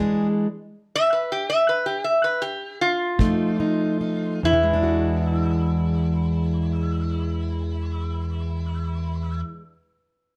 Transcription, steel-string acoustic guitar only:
0.00 0.46 E2 medium
0.00 0.46 E3 medium
0.00 0.47 G#3 medium
0.00 0.47 D4 medium
0.00 0.27 G#4 medium
3.19 3.92 F2 medium
3.19 4.39 F3 medium
3.19 4.40 A3 medium
3.19 3.59 D#4 medium
3.60 4.00 D#4 medium
4.01 4.39 D#4 medium
4.43 9.42 E2 medium
4.53 9.52 E3 medium
4.63 9.62 G#3 medium
4.73 9.72 D4 medium
4.83 9.82 F#4 medium

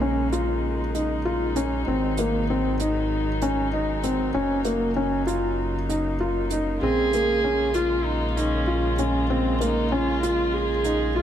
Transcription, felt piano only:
0.01 0.26 C#4 medium
0.32 0.81 F4 medium
0.95 1.19 D#4 medium
1.25 1.49 F4 medium
1.56 1.80 C#4 medium
1.88 2.12 C4 medium
2.19 2.43 A#3 medium
2.50 2.74 C4 medium
2.81 3.29 D#4 medium
3.42 3.66 C#4 medium
3.73 3.97 D#4 medium
4.04 4.28 C4 medium
4.34 4.59 C#4 medium
4.65 4.89 A#3 medium
4.96 5.21 C#4 medium
5.27 5.75 F4 medium
5.89 6.13 D#4 medium
6.20 6.44 F4 medium
6.52 6.76 D#4 medium
6.83 7.07 C4 medium
7.14 7.38 A#3 medium
7.44 7.68 C#4 medium
7.75 8.23 F4 medium
8.37 8.61 D#4 medium
8.68 8.92 F4 medium
8.99 9.23 C#4 medium
9.30 9.54 C4 medium
9.61 9.85 A#3 medium
9.92 10.16 C#4 medium
10.23 10.71 F4 medium
10.85 11.09 D#4 medium
11.16 11.22 F4 medium

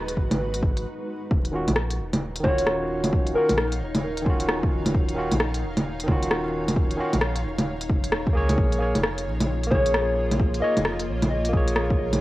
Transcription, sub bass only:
0.00 0.19 D#1 medium
0.17 0.61 G#1 medium
0.63 0.85 G#1 medium
1.31 1.66 D#1 loud
1.68 2.01 A#1 medium
1.99 2.43 D#1 medium
2.44 3.34 D#1 loud
3.50 3.82 A#1 medium
3.81 4.25 D#1 medium
4.26 4.71 D#1 medium
4.72 4.93 D#1 medium
4.94 5.29 D#1 loud
5.32 5.65 A#1 medium
5.63 6.07 D#1 medium
6.08 6.98 D#1 loud
7.13 7.46 A#1 medium
7.44 7.91 D#1 medium
7.90 8.14 F#1 medium
8.13 8.26 D#1 medium
8.35 8.57 C#2 loud
8.58 8.93 A#1 loud
8.96 9.28 F1 medium
9.26 9.71 A#1 medium
9.72 10.61 A#1 loud
10.78 11.10 F1 medium
11.08 11.53 A#1 medium
11.53 11.98 A#1 medium
11.99 12.20 A#1 medium

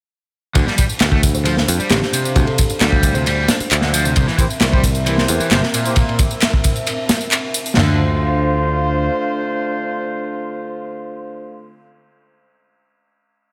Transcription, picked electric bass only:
0.56 0.65 D2 loud
1.01 1.65 D2 medium
1.69 1.78 F2 medium
1.80 muted picked electric bass stroke soft
1.91 2.00 A1 loud
2.36 2.45 D2 loud
2.71 muted picked electric bass stroke soft
2.82 3.45 D2 medium
3.61 muted picked electric bass stroke soft
3.72 4.13 D2 loud
4.17 4.26 C2 loud
4.62 5.26 C2 medium
5.29 5.38 E2 medium
5.41 muted picked electric bass stroke soft
5.51 5.61 G1 loud
7.77 9.08 D2 loud

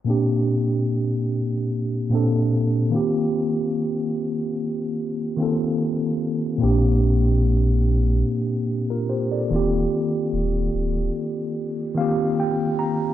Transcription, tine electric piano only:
0.04 1.30 A#2 medium
0.04 1.31 A#3 medium
0.04 1.32 C4 medium
0.09 1.32 D4 medium
0.09 1.33 G4 medium
2.09 2.92 A#2 medium
2.09 2.91 A#3 medium
2.09 2.92 C4 medium
2.14 2.94 D4 medium
2.14 2.95 A4 medium
2.90 4.24 D#3 medium
2.90 4.25 A#3 medium
2.90 4.25 C4 medium
2.95 4.26 F4 medium
2.95 4.27 G4 medium
5.37 6.33 D#3 medium
5.37 6.34 A#3 medium
5.37 6.35 C4 medium
5.41 6.36 F4 medium
5.41 6.36 A4 medium
6.58 7.86 A#2 medium
6.58 7.87 A#3 medium
6.58 7.87 C4 medium
6.62 7.88 D4 medium
6.62 7.88 G4 medium
8.90 9.08 F4 medium
8.90 9.08 A#4 medium
9.09 9.31 G4 soft
9.09 9.31 C5 medium
9.32 9.71 A4 soft
9.32 9.71 D5 medium
9.50 10.83 D#3 medium
9.50 10.83 A#3 medium
9.50 10.84 C4 medium
9.55 10.85 F4 medium
9.55 10.85 G4 medium
11.95 12.91 D#3 medium
11.95 12.92 A#3 medium
11.95 12.93 C4 medium
11.95 12.36 F5 medium
11.99 12.93 F4 medium
11.99 12.94 G4 medium
12.40 12.77 G5 medium
12.79 13.14 A#5 medium

